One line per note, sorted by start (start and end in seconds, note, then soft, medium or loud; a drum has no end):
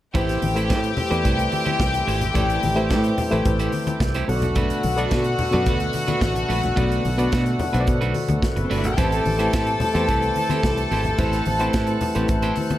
0.14 0.36 A1 loud
0.14 4.25 E3 medium
0.14 0.49 A3 medium
0.14 0.40 A3 medium
0.14 12.78 A3 medium
0.14 4.25 C4 medium
0.14 0.49 E4 medium
0.14 0.40 E4 medium
0.14 0.50 G4 medium
0.14 3.97 G4 loud
0.14 0.40 G4 medium
0.14 4.25 G4 medium
0.14 0.50 B4 medium
0.14 0.50 C5 medium
0.14 0.40 C5 medium
0.14 3.97 G5 loud
0.14 kick loud
0.14 closed hi-hat medium
0.14 low conga medium
0.29 snare soft
0.29 closed hi-hat soft
0.42 0.72 A1 medium
0.42 muted clean electric guitar stroke soft
0.42 open hi-hat medium
0.42 high conga medium
0.55 1.02 A3 medium
0.55 0.68 A3 soft
0.55 1.02 E4 medium
0.55 0.69 E4 medium
0.55 1.03 G4 medium
0.55 0.70 G4 soft
0.55 1.03 B4 medium
0.55 0.70 C5 medium
0.55 1.03 C5 medium
0.55 closed hi-hat soft
0.69 0.92 A2 medium
0.69 0.88 A3 medium
0.69 0.83 E4 medium
0.69 0.83 G4 loud
0.69 0.82 C5 loud
0.69 kick loud
0.69 snare medium
0.69 closed hi-hat medium
0.84 muted clean electric guitar stroke soft
0.84 closed hi-hat medium
0.97 muted clean electric guitar stroke soft
0.97 open hi-hat medium
0.97 low conga medium
1.11 1.22 E2 medium
1.11 2.04 A3 medium
1.11 1.23 A3 medium
1.11 2.04 E4 medium
1.11 1.24 E4 medium
1.11 1.24 G4 medium
1.11 2.05 G4 medium
1.11 2.05 B4 medium
1.11 1.25 C5 medium
1.11 2.05 D5 medium
1.11 closed hi-hat soft
1.24 1.47 C2 medium
1.24 1.44 A3 medium
1.24 1.38 E4 medium
1.24 1.37 G4 medium
1.24 1.37 C5 medium
1.24 kick loud
1.24 closed hi-hat medium
1.38 muted clean electric guitar stroke soft
1.38 closed hi-hat soft
1.52 muted clean electric guitar stroke soft
1.52 open hi-hat medium
1.52 muted conga soft
1.52 high conga medium
1.66 1.78 A3 medium
1.66 1.79 E4 medium
1.66 1.79 G4 medium
1.66 1.79 C5 medium
1.66 closed hi-hat soft
1.66 high conga medium
1.79 2.01 C2 medium
1.79 muted clean electric guitar stroke soft
1.79 kick loud
1.79 snare medium
1.79 closed hi-hat medium
1.79 muted conga soft
1.93 muted clean electric guitar stroke soft
1.93 closed hi-hat soft
2.07 2.29 G#1 medium
2.07 2.26 A3 medium
2.07 2.21 E4 medium
2.07 2.21 G4 medium
2.07 2.20 C5 medium
2.07 open hi-hat medium
2.21 muted clean electric guitar stroke medium
2.21 closed hi-hat soft
2.21 low conga medium
2.34 2.57 A1 loud
2.34 2.70 A3 medium
2.34 2.60 A3 medium
2.34 2.70 E4 medium
2.34 2.61 E4 medium
2.34 2.70 G4 medium
2.34 2.61 G4 medium
2.34 2.70 B4 medium
2.34 2.61 C5 medium
2.34 2.70 D5 medium
2.34 kick loud
2.34 closed hi-hat medium
2.34 low conga medium
2.50 closed hi-hat soft
2.63 2.92 A1 medium
2.63 muted clean electric guitar stroke soft
2.63 open hi-hat medium
2.63 muted conga soft
2.63 high conga medium
2.75 3.23 A3 medium
2.75 2.89 A3 soft
2.75 3.23 E4 medium
2.75 2.89 E4 soft
2.75 3.23 G4 medium
2.75 2.90 G4 medium
2.75 3.24 B4 medium
2.75 2.90 C5 medium
2.75 3.24 C5 medium
2.75 closed hi-hat soft
2.90 3.12 A2 medium
2.90 3.09 A3 medium
2.90 3.04 E4 medium
2.90 3.03 G4 medium
2.90 3.03 C5 medium
2.90 kick loud
2.90 snare medium
2.90 closed hi-hat medium
2.90 muted conga soft
3.04 muted clean electric guitar stroke medium
3.04 closed hi-hat soft
3.18 muted clean electric guitar stroke soft
3.18 open hi-hat medium
3.18 low conga medium
3.31 3.43 A1 medium
3.31 4.25 A3 medium
3.31 3.44 A3 medium
3.31 4.25 E4 medium
3.31 3.45 E4 medium
3.31 4.25 G4 medium
3.31 3.45 G4 medium
3.31 4.25 B4 medium
3.31 3.45 C5 medium
3.31 4.26 C5 medium
3.31 closed hi-hat soft
3.45 3.67 A1 loud
3.45 muted clean electric guitar stroke soft
3.45 kick loud
3.45 closed hi-hat medium
3.45 muted conga soft
3.59 3.72 A3 medium
3.59 3.72 E4 medium
3.59 3.73 G4 medium
3.59 3.73 C5 medium
3.59 closed hi-hat soft
3.72 muted clean electric guitar stroke soft
3.72 open hi-hat medium
3.72 high conga medium
3.87 muted clean electric guitar stroke soft
3.87 closed hi-hat soft
3.87 high conga medium
4.00 4.22 C2 medium
4.00 muted clean electric guitar stroke soft
4.00 kick loud
4.00 snare loud
4.00 closed hi-hat medium
4.14 4.28 A3 medium
4.14 4.29 E4 medium
4.14 4.29 G4 medium
4.14 4.30 C5 medium
4.14 closed hi-hat soft
4.28 4.71 B1 medium
4.28 4.87 B2 medium
4.28 8.94 D3 medium
4.28 4.87 B3 medium
4.28 8.94 B3 medium
4.28 4.87 F#4 medium
4.28 8.39 F#4 medium
4.28 8.94 F#4 medium
4.28 4.87 A4 medium
4.28 4.35 C#5 medium
4.28 8.39 F#5 medium
4.28 open hi-hat medium
4.28 muted conga soft
4.36 4.91 D5 medium
4.42 muted clean electric guitar stroke soft
4.42 closed hi-hat soft
4.42 low conga medium
4.55 4.81 A3 medium
4.55 4.82 D4 medium
4.55 4.82 F#4 medium
4.55 4.82 B4 medium
4.55 kick loud
4.55 closed hi-hat medium
4.55 low conga medium
4.70 closed hi-hat soft
4.83 5.05 B1 medium
4.83 muted clean electric guitar stroke soft
4.83 open hi-hat medium
4.83 high conga medium
4.96 5.44 B2 medium
4.96 5.10 A3 medium
4.96 5.44 B3 medium
4.96 5.11 D4 soft
4.96 5.44 F#4 medium
4.96 5.11 F#4 medium
4.96 5.44 A4 medium
4.96 5.12 B4 medium
4.96 5.45 D5 medium
4.96 closed hi-hat soft
5.11 5.33 B2 loud
5.11 5.30 A3 medium
5.11 5.26 D4 medium
5.11 5.26 F#4 medium
5.11 5.25 B4 loud
5.11 kick medium
5.11 snare loud
5.11 closed hi-hat medium
5.11 muted conga soft
5.24 muted clean electric guitar stroke soft
5.24 closed hi-hat soft
5.38 muted clean electric guitar stroke soft
5.38 open hi-hat medium
5.38 muted conga soft
5.38 low conga medium
5.51 5.67 F#2 loud
5.51 6.46 B2 medium
5.51 5.65 A3 medium
5.51 6.46 B3 medium
5.51 5.66 D4 medium
5.51 6.46 F#4 medium
5.51 5.67 F#4 medium
5.51 6.46 A4 medium
5.51 5.67 B4 medium
5.51 6.47 D5 medium
5.51 closed hi-hat soft
5.66 5.88 D2 medium
5.66 5.85 A3 medium
5.66 5.81 D4 medium
5.66 5.80 F#4 medium
5.66 5.80 B4 medium
5.66 kick loud
5.66 closed hi-hat medium
5.66 muted conga soft
5.80 muted clean electric guitar stroke soft
5.80 closed hi-hat soft
5.93 muted clean electric guitar stroke soft
5.93 open hi-hat medium
5.93 high conga medium
6.08 6.21 A3 soft
6.08 6.21 D4 medium
6.08 6.21 F#4 medium
6.08 6.22 B4 medium
6.08 closed hi-hat soft
6.08 high conga medium
6.21 6.43 A1 medium
6.21 kick loud
6.21 snare loud
6.21 closed hi-hat medium
6.35 muted clean electric guitar stroke soft
6.35 closed hi-hat soft
6.49 6.71 A#1 medium
6.49 6.68 A3 medium
6.49 6.63 D4 medium
6.49 6.62 F#4 medium
6.49 6.62 B4 medium
6.49 open hi-hat medium
6.49 muted conga soft
6.63 muted clean electric guitar stroke medium
6.63 closed hi-hat soft
6.63 low conga medium
6.76 6.99 B1 loud
6.76 7.12 B2 medium
6.76 7.02 A3 medium
6.76 7.12 B3 medium
6.76 7.02 D4 medium
6.76 7.12 F#4 medium
6.76 7.02 F#4 medium
6.76 7.12 A4 medium
6.76 7.03 B4 medium
6.76 7.12 D5 medium
6.76 kick loud
6.76 closed hi-hat medium
6.76 muted conga soft
6.76 low conga medium
6.92 closed hi-hat soft
7.05 7.26 B1 medium
7.05 muted clean electric guitar stroke soft
7.05 open hi-hat medium
7.05 high conga medium
7.17 7.65 B2 medium
7.17 7.31 A3 soft
7.17 7.65 B3 medium
7.17 7.32 D4 medium
7.17 7.65 F#4 medium
7.17 7.32 F#4 soft
7.17 7.65 A4 medium
7.17 7.32 B4 medium
7.17 7.66 D5 medium
7.17 closed hi-hat soft
7.32 7.54 B2 medium
7.32 7.51 A3 medium
7.32 7.46 D4 medium
7.32 7.45 F#4 loud
7.32 7.44 B4 loud
7.32 kick loud
7.32 snare medium
7.32 closed hi-hat medium
7.46 muted clean electric guitar stroke soft
7.46 closed hi-hat soft
7.59 muted clean electric guitar stroke soft
7.59 open hi-hat medium
7.59 muted conga soft
7.59 low conga loud
7.73 7.85 B1 loud
7.73 8.67 B2 medium
7.73 7.86 A3 soft
7.73 8.67 B3 medium
7.73 7.87 D4 medium
7.73 8.67 F#4 medium
7.73 7.87 F#4 soft
7.73 8.67 A4 medium
7.73 7.87 B4 medium
7.73 7.81 C5 medium
7.73 closed hi-hat soft
7.81 8.71 D5 medium
7.87 7.99 B2 medium
7.87 muted clean electric guitar stroke soft
7.87 kick loud
7.87 closed hi-hat medium
7.87 muted conga soft
8.01 8.12 B1 medium
8.01 8.14 A3 medium
8.01 8.14 D4 medium
8.01 8.15 F#4 medium
8.01 8.15 B4 medium
8.01 closed hi-hat soft
8.14 muted clean electric guitar stroke soft
8.14 open hi-hat medium
8.14 high conga medium
8.29 8.40 D2 medium
8.29 muted clean electric guitar stroke soft
8.29 closed hi-hat soft
8.29 high conga medium
8.42 kick loud
8.42 snare medium
8.42 closed hi-hat medium
8.56 8.67 F#1 medium
8.56 8.64 B3 medium
8.56 8.64 B4 medium
8.56 muted clean electric guitar stroke medium
8.56 closed hi-hat soft
8.64 8.71 C4 medium
8.64 8.71 C5 medium
8.70 8.84 G1 medium
8.70 8.89 A3 medium
8.70 8.84 D4 medium
8.70 8.78 D4 medium
8.70 8.84 F#4 medium
8.70 8.83 B4 medium
8.70 8.78 D5 medium
8.70 open hi-hat medium
8.70 muted conga soft
8.77 8.84 E4 medium
8.77 8.84 E5 medium
8.84 8.95 G#1 medium
8.84 8.92 F#4 medium
8.84 8.92 F#5 medium
8.84 muted clean electric guitar stroke soft
8.84 closed hi-hat soft
8.84 low conga medium
8.92 8.99 G4 medium
8.92 8.99 G5 medium
8.97 9.20 A1 medium
8.97 12.78 E3 medium
8.97 9.33 A3 medium
8.97 9.23 C4 medium
8.97 12.78 C4 medium
8.97 9.33 E4 medium
8.97 9.23 E4 medium
8.97 9.33 G4 medium
8.97 11.17 G4 medium
8.97 9.24 G4 medium
8.97 12.78 A4 loud
8.97 9.33 B4 medium
8.97 9.33 C5 medium
8.97 9.24 C5 medium
8.97 12.78 A5 loud
8.97 kick loud
8.97 closed hi-hat medium
8.97 muted conga soft
8.97 low conga medium
9.12 closed hi-hat soft
9.25 9.47 A1 medium
9.25 muted clean electric guitar stroke soft
9.25 open hi-hat medium
9.25 high conga medium
9.38 9.86 A3 medium
9.38 9.52 C4 soft
9.38 9.86 E4 medium
9.38 9.52 E4 medium
9.38 9.86 G4 medium
9.38 9.53 G4 medium
9.38 9.86 B4 medium
9.38 9.53 C5 medium
9.38 9.86 C5 medium
9.38 closed hi-hat soft
9.53 9.75 A2 medium
9.53 9.72 C4 medium
9.53 9.67 E4 medium
9.53 9.67 G4 medium
9.53 9.66 C5 medium
9.53 kick loud
9.53 snare loud
9.53 closed hi-hat medium
9.53 muted conga soft
9.67 muted clean electric guitar stroke soft
9.67 closed hi-hat medium
9.80 muted clean electric guitar stroke soft
9.80 open hi-hat medium
9.80 muted conga soft
9.80 low conga medium
9.94 10.05 E2 medium
9.94 10.88 A3 medium
9.94 10.08 C4 medium
9.94 10.88 E4 medium
9.94 10.08 E4 medium
9.94 10.88 G4 medium
9.94 10.09 G4 medium
9.94 10.88 B4 medium
9.94 10.09 C5 medium
9.94 10.88 C5 medium
9.94 closed hi-hat soft
10.08 10.30 C2 medium
10.08 10.28 C4 medium
10.08 10.23 E4 medium
10.08 10.22 G4 medium
10.08 10.22 C5 medium
10.08 kick loud
10.08 closed hi-hat medium
10.22 muted clean electric guitar stroke soft
10.22 closed hi-hat soft
10.36 muted clean electric guitar stroke soft
10.36 open hi-hat medium
10.36 muted conga soft
10.36 high conga medium
10.50 10.63 C4 medium
10.50 10.63 E4 medium
10.50 10.64 G4 medium
10.50 10.64 C5 medium
10.50 closed hi-hat soft
10.50 high conga medium
10.63 10.85 C2 medium
10.63 muted clean electric guitar stroke medium
10.63 kick loud
10.63 snare loud
10.63 closed hi-hat medium
10.63 muted conga soft
10.77 muted clean electric guitar stroke soft
10.77 closed hi-hat soft
10.91 11.13 G#1 medium
10.91 11.10 C4 medium
10.91 11.05 E4 medium
10.91 11.05 G4 medium
10.91 11.04 C5 medium
10.91 open hi-hat medium
10.91 muted conga soft
11.04 muted clean electric guitar stroke soft
11.04 closed hi-hat soft
11.04 low conga medium
11.18 11.40 A1 medium
11.18 11.54 A3 medium
11.18 11.44 C4 medium
11.18 11.54 E4 medium
11.18 11.45 E4 medium
11.18 11.54 G4 medium
11.18 11.45 G4 medium
11.18 11.54 B4 medium
11.18 11.54 C5 medium
11.18 11.45 C5 medium
11.18 12.78 F#5 medium
11.18 kick loud
11.18 closed hi-hat medium
11.18 muted conga soft
11.18 low conga medium
11.33 snare soft
11.33 closed hi-hat soft
11.45 11.68 A1 medium
11.45 muted clean electric guitar stroke soft
11.45 open hi-hat medium
11.45 muted conga soft
11.45 high conga medium
11.59 12.07 A3 medium
11.59 11.73 C4 medium
11.59 12.07 E4 medium
11.59 11.73 E4 soft
11.59 12.07 G4 medium
11.59 11.74 G4 medium
11.59 12.07 B4 medium
11.59 11.74 C5 medium
11.59 12.07 C5 medium
11.59 closed hi-hat soft
11.73 11.96 A2 medium
11.73 11.93 C4 medium
11.73 11.88 E4 medium
11.73 11.88 G4 medium
11.73 11.87 C5 medium
11.73 kick loud
11.73 snare loud
11.73 closed hi-hat medium
11.73 muted conga soft
11.87 muted clean electric guitar stroke soft
11.87 closed hi-hat soft
12.01 muted clean electric guitar stroke soft
12.01 open hi-hat medium
12.01 muted conga soft
12.01 low conga medium
12.15 12.26 A1 medium
12.15 12.78 A3 medium
12.15 12.28 C4 medium
12.15 12.78 E4 medium
12.15 12.29 E4 soft
12.15 12.78 G4 medium
12.15 12.29 G4 medium
12.15 12.78 B4 medium
12.15 12.29 C5 medium
12.15 12.78 C5 medium
12.15 closed hi-hat medium
12.28 12.51 A1 medium
12.28 muted clean electric guitar stroke soft
12.28 kick loud
12.28 closed hi-hat medium
12.28 muted conga soft
12.42 12.56 C4 medium
12.42 12.56 E4 medium
12.42 12.56 G4 medium
12.42 12.57 C5 medium
12.42 closed hi-hat soft
12.56 muted clean electric guitar stroke soft
12.56 open hi-hat medium
12.56 high conga medium
12.70 muted clean electric guitar stroke medium
12.70 closed hi-hat soft
12.70 high conga medium